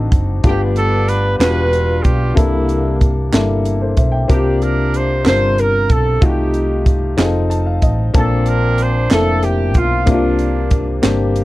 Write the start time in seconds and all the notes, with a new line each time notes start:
Already playing: D3 C4 D4 D#4 F#4 A4
0.12 F#1, kick, closed hi-hat
0.43 G1 G2 A3 D4 F4 G4, kick, closed hi-hat
0.48 B3 D4
0.76 A4, closed hi-hat
1.08 B4, closed hi-hat
1.39 E1 B3 D4 F4 F#4 B4, snare, clap, closed hi-hat
1.48 G4
1.73 closed hi-hat
2.02 B1 G4, kick, closed hi-hat
2.35 C2 C3 G3 A#3 D4 E4 A4, kick, closed hi-hat
2.69 closed hi-hat
3.01 kick, closed hi-hat
3.33 G1 A#3 D4 E4 A4, snare, clap, closed hi-hat
3.65 closed hi-hat
3.81 A4 C5
3.97 B1 C5 E5, kick, closed hi-hat
4.12 E5 G5
4.28 C2 C3 A#3 C4 D4 E4 G4 A#4, kick, closed hi-hat
4.35 F4
4.62 A#4, closed hi-hat
4.94 C5, closed hi-hat
5.24 G1 C4 D4 F4 A#4, snare, clap, closed hi-hat
5.28 C5
5.58 A#4, closed hi-hat
5.89 B1 A4, kick, closed hi-hat
6.21 C2 C3 A3 D#4 F4 F#4 G4, kick, closed hi-hat
6.29 G4
6.54 closed hi-hat
6.86 kick, closed hi-hat
7.17 F1 C4 D#4 F4 G#4, snare, clap, closed hi-hat
7.25 A4
7.50 A5, closed hi-hat
7.66 F5
7.82 A1 D#5, kick, closed hi-hat
8.14 A#1 A#2 A#3 C4 D4 A4 A5, kick, closed hi-hat
8.46 A#4, closed hi-hat
8.78 C5, closed hi-hat
9.10 F1 A#3 C4 D4 E4 A4, snare, clap, closed hi-hat
9.43 G4, closed hi-hat
9.74 B1 F4, kick, closed hi-hat
10.06 C2 C3 A#3 C4 D4 E4, kick, closed hi-hat
10.10 A#3 D4 F4
10.14 F4
10.39 closed hi-hat
10.71 kick, closed hi-hat
11.02 G1 A#3 C4 D4 G4, snare, clap, closed hi-hat
11.36 closed hi-hat